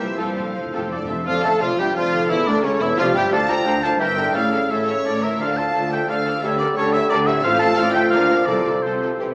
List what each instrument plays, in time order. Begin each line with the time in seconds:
Already playing: harp C3 E4 G4 C5, bassoon E3, violin section G4 E5, clarinet G4, oboe C5
0.00 double bass section C2, french horn section A#2, harp F3
0.05 harp C4
0.10 harp F4
0.14 timpani F2, cello section G3, viola section F4 A4, harp A4, oboe C5, violin section F5
0.18 double bass section F2, french horn section A#2, bassoon F3, violin section A4, clarinet A4
0.26 timpani F2
0.34 timpani F2, double bass section F2, viola section A4 C5
0.42 timpani F2
0.50 timpani F2
0.54 timpani F2, french horn section A2, bassoon F3, cello section F3, clarinet A4, violin section C5, oboe C5
0.65 timpani F2
0.73 timpani F2, double bass section F2, viola section F4 A4, violin section G4
0.82 timpani F2
0.88 timpani F2, double bass section F2, viola section A4 C5, flute section A4, violin section A4 D5, oboe D5
0.97 timpani F2
1.05 timpani F2, harp D3, flute section C5, violin section E5
1.09 double bass section F2, timpani F2, harp D4, viola section A4, oboe E5
1.16 harp F4
1.21 harp A4
1.25 double bass section F1, cello section F2, bassoon F3, violin section F4 F5, clarinet F4, viola section F4, french horn section A4, flute section D5, oboe F5
1.42 double bass section A1, cello section A2, bassoon A3, violin section A4 A5, clarinet A4, viola section A4, flute section F5, oboe A5
1.60 double bass section F1, cello section F2, bassoon F3, viola section F4, clarinet F4, violin section F4 F5, french horn section F4, flute section D5, oboe F5
1.78 double bass section G1, cello section G2, bassoon G3, viola section G4, clarinet G4, violin section G4 G5, flute section E5, oboe G5
1.95 double bass section F1, cello section F2, bassoon F3, viola section F4, violin section F4 F5, clarinet F4, french horn section A4, flute section D5, oboe F5
2.12 harp D3
2.17 harp C#4
2.22 harp G4
2.26 double bass section E1, cello section E2, violin section E4, harp A4, oboe E5
2.30 bassoon E3, viola section E4, clarinet E4, flute section C#5, violin section E5
2.46 double bass section D2, cello section D2, bassoon D3, viola section D4, violin section D4 D5, clarinet D4, flute section A#4, oboe D5
2.62 cello section C#2, double bass section C#2, bassoon C#3, violin section C#4 C#5, viola section C#4, clarinet C#4, flute section A4, oboe C#5
2.79 double bass section E1, cello section E2, bassoon E3, violin section E4 E5, viola section E4, clarinet E4, flute section C#5, oboe E5
2.98 double bass section F1, cello section F2, bassoon F3, violin section F4 F5, viola section F4, clarinet F4, french horn section G4, flute section D5, oboe F5
3.14 double bass section G1, cello section G2, harp D3, bassoon G3, viola section G4, violin section G4 G5, flute section E5, oboe G5
3.18 harp D4, clarinet G4
3.23 harp F4
3.27 cello section D2, harp A4, flute section F5
3.31 double bass section D2, bassoon F3, viola section D4 F4, french horn section F4, violin section A4 A5, clarinet D5, oboe A5
3.48 viola section D4 F4, violin section A4 A#5, flute section G5, oboe A#5
3.65 cello section D2, double bass section D2, french horn section D4, viola section D4 F4, violin section A4, clarinet C5
3.82 harp G2, viola section D4 F4, violin section A4 A5, flute section F5, oboe A5
3.87 harp E4
3.91 harp A#4
3.98 double bass section G1, cello section G2, bassoon E3, viola section E4, french horn section E4, violin section A#4 G5, clarinet A#4, flute section E5, oboe G5
4.16 harp A2, bassoon D3, viola section E4, violin section A#4
4.21 harp C#4
4.26 harp E4 A4
4.34 double bass section A1, cello section A2, bassoon C#3, french horn section C#4, viola section C#4 E4, violin section A4 F5, clarinet A4, flute section D5, oboe F5
4.51 viola section C#4 E4, violin section A4
4.68 double bass section A1, cello section A2, viola section C#4 E4, violin section A4 E5, flute section C#5, oboe E5
4.88 viola section C#4 E4, violin section C#5
5.03 double bass section A1, cello section A2, viola section C#4 E4, flute section A4, violin section D5, oboe D5
5.21 harp D3, viola section C#4 E4, violin section A#4 E5, flute section C#5, oboe E5
5.28 harp D4
5.32 harp F4
5.36 double bass section D2, bassoon F3, harp A4, clarinet A4, flute section D5, violin section F5
5.40 cello section D3, viola section D4 F4, violin section A4, oboe F5
5.57 viola section D4 F4, violin section A4 A5, flute section F5, oboe A5
5.75 double bass section D2, cello section D3, viola section D4 F4, french horn section F4, violin section A4
5.91 viola section D4 F4, violin section A4 G5, flute section E5, oboe G5
6.08 double bass section D2, cello section D3, viola section D4 F4, french horn section A4, violin section A4 F5, flute section D5, oboe F5
6.25 harp D3, viola section D4 F4, violin section A4
6.29 harp C#4
6.34 harp G4
6.39 double bass section D2, cello section D3, french horn section G4, harp A4, oboe E5
6.43 bassoon G3, viola section C#4 G4, violin section A4 E5, flute section C#5
6.59 viola section C#4 G4, violin section A4 D5, flute section A#4, oboe D5
6.76 double bass section D2, cello section D3, viola section C#4 G4, french horn section A4, flute section A4, violin section A4 C#5, oboe C#5
6.92 viola section C#4 G4, violin section A4 E5, flute section C#5, oboe E5
7.09 double bass section D2, cello section D3, viola section C#4 G4, violin section A4 D5, flute section A#4, oboe D5
7.25 harp A2, viola section C#4 G4, violin section A4 E5, flute section C#5, oboe E5
7.29 harp C4
7.34 harp F4
7.39 harp A4
7.43 double bass section A1, cello section A2, bassoon F3, viola section C4 F4, french horn section F4, clarinet A4, violin section A4 F5, flute section C5, oboe F5
7.59 viola section C4 F4, violin section A4 A5, flute section F5, oboe A5
7.76 double bass section A1, cello section A2, viola section C4 F4, french horn section F4, violin section A4 F5, flute section D5, oboe F5
7.93 harp D3, viola section C4 F4, violin section A4 G5, flute section E5, oboe G5
7.98 harp A#3
8.02 harp F4
8.06 harp A#4, flute section D5
8.10 double bass section D2, cello section D3, viola section A#3 F4, clarinet A#4, violin section A#4 F5, oboe F5
8.29 harp C3, viola section A#3 F4, violin section A#4
8.33 harp C4
8.37 harp F4
8.42 harp A4, flute section A#4
8.46 double bass section C2, cello section C3, timpani C3, viola section C4 F4, french horn section A4, violin section A4 D5, clarinet A4, oboe D5
8.66 viola section C4 F4, violin section A4
8.83 double bass section C2, cello section C3, viola section C4 F4, flute section A4, violin section A4 C5, oboe C5
9.02 harp C3, viola section C4 F4, violin section A4
9.07 harp C4
9.12 harp E4
9.16 double bass section C2, harp G4, clarinet G4, violin section G4
9.21 cello section C3, bassoon E3, viola section C4 E4